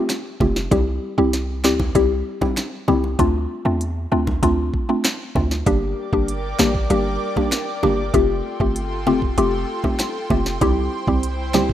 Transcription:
Already playing: A3 C4 F4 G4
0.09 finger snap, snare, closed hi-hat, high bongo
0.40 F1 A3 C4 F4 G4, kick, low bongo
0.56 snare, high bongo
0.71 C2 G3 C4 E4 G4, kick, closed hi-hat, high bongo
1.18 C2 G3 C4 E4 G4
1.33 snare, closed hi-hat
1.64 D2 G3 C4 E4 G4, finger snap, snare
1.79 kick, high bongo
1.95 C2 G3 C4 E4 G4, kick, closed hi-hat, high bongo
2.41 G3 C4 E4 G4, kick, cross-stick, high bongo
2.56 finger snap, snare, closed hi-hat, high bongo
2.88 C2 G3 C4 E4 G4, low bongo
3.04 high bongo
3.19 D2 A3 C4 D4 F4, kick, closed hi-hat, high bongo
3.65 E2 A3 C4 D4 F4
3.81 closed hi-hat
4.12 D2 A3 C4 D4 F4
4.27 kick, high bongo
4.43 D2 A3 C4 D4 F4, kick, closed hi-hat, high bongo
4.74 kick
4.89 A3 C4 D4 F4
5.04 finger snap, snare, closed hi-hat, high bongo
5.35 D2 A3 C4 D4 F4, kick, low bongo
5.51 snare, high bongo
5.66 G1 G3 A#3 D4 G4 A#4 D5 G5 D6, kick, closed hi-hat, high bongo
6.13 G1 G3 A#3 D4 G4, kick
6.28 closed hi-hat
6.59 A1 G3 A#3 D4 G4, finger snap, snare, low bongo
6.75 kick
6.90 G1 G3 A#3 D4 G4, closed hi-hat, high bongo
7.36 G3 A#3 D4 G4, kick, high bongo
7.51 finger snap, snare, closed hi-hat, high bongo
7.83 G1 G3 A#3 D4 G4, low bongo
8.14 F1 A3 C4 F4 G4 A4 G5 C6, kick, closed hi-hat, high bongo
8.60 G1 A3 C4 F4 G4, kick
8.76 closed hi-hat
9.07 E1 A3 C4 F4 G4, low bongo
9.22 kick
9.38 F1 A3 C4 F4 G4, closed hi-hat, high bongo
9.84 A3 C4 F4 G4, kick, high bongo
9.99 finger snap, snare, closed hi-hat, high bongo
10.30 F1 A3 C4 F4 G4, kick, low bongo
10.46 snare
10.61 C2 G3 C4 E4 G4 C5, kick, closed hi-hat, high bongo
11.07 C2 G3 C4 E4 G4, kick
11.23 closed hi-hat
11.53 D2 G3 C4 E4 G4, finger snap, snare, low bongo
11.69 kick

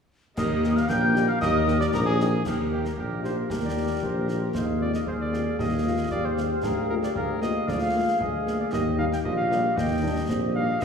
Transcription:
0.37 D#2 G3 A#3 G4 A#4 D#5 D#6, concert bass drum, snare, crash
0.63 A#3 D#4 G4, snare
0.76 F5 F6, snare
0.89 A#1 G4 A#4 G5 G6, concert bass drum, snare
1.15 A#3 D#4 G4, snare
1.28 F5 F6
1.41 D#2 G4 A#4 D#5 D#6, concert bass drum, snare
1.67 A#3 D#4 G4, snare
1.80 D5 D6, snare
1.93 A#1 G4 A#4 D#6, concert bass drum, snare
2.06 G#4
2.19 A#3 D#4 G4, snare
2.45 D#2 G4 A#4, concert bass drum, snare, crash
2.71 A#3 D#4 G4
2.85 A#4, snare
2.97 A#1 A#3 G4 A#4, concert bass drum
3.23 A#3 D#4 G4 C5, snare
3.50 D#2 G4 A#4, concert bass drum, snare
3.64 D5
3.76 A#3 D#4 G4
4.02 A#1 C5, concert bass drum
4.28 A#3 D#4 G4, snare
4.43 A#4
4.54 D#2 D#4 G#4 C5 F5, concert bass drum, snare
4.80 G#3 C4 F4 D5
4.94 D#5, snare
5.06 D#2 G#4 C5 F5, concert bass drum
5.21 D5
5.32 G#3 C4 F4, snare
5.58 D#2 G4 G#4 D#5 F5, concert bass drum, snare
5.84 G#3 C4 F4
6.11 D#2 G4 D5, concert bass drum
6.25 C5
6.37 G#3 C4 F4, snare
6.63 D2 G#4 A#4 F5, concert bass drum, snare, crash
6.89 G#3 A#3 F4 A#4
7.03 D5, snare
7.15 D2 G#4 A#4 F5, concert bass drum
7.41 G#3 A#3 F4 D#5, snare
7.67 D2 F4 G#4 D5 F5, concert bass drum, snare
7.81 F5
7.93 G#3 A#3 F4
8.19 D2 G#4 D#5, concert bass drum
8.46 G#3 A#3 F4, snare
8.60 D5
8.71 D#2 G4 D#5, concert bass drum, snare
8.98 G3 A#3 D#4 F5
9.12 G5, snare
9.24 A#1 F4 G4 D#5, concert bass drum
9.37 F5
9.51 G3 A#3 D#4, snare
9.76 D#2 D#4 G4 D#5 G5, concert bass drum, snare
10.02 G3 A#3 D4 D#4
10.29 A#1 C4, concert bass drum, snare
10.55 G3 A#3 D#4 F5
10.81 C#2 C#4 G4 D#5

